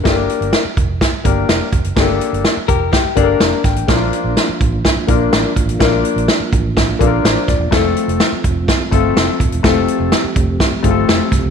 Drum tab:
HH |x-xxx-x-x-x-x-xx|x-xxx-x-x-x-x-xx|x-x-x-x-x-x-x-xx|x-xxx-x-x-x-x-x-|
SD |o---o---o---o---|o---o---o---o-o-|o---o---o---o---|o---o---o---o-o-|
BD |o-----o-o-o---o-|o-----o-o-o---o-|o-----o-o-o---o-|o-----o-o-o---o-|

HH |x-xxx-x-x-x-x-xx|x-x-x-x-x-x-x-x-|
SD |o---o---o---o---|o---o---o---o-o-|
BD |o-----o-o-o---o-|o-----o-o-o---o-|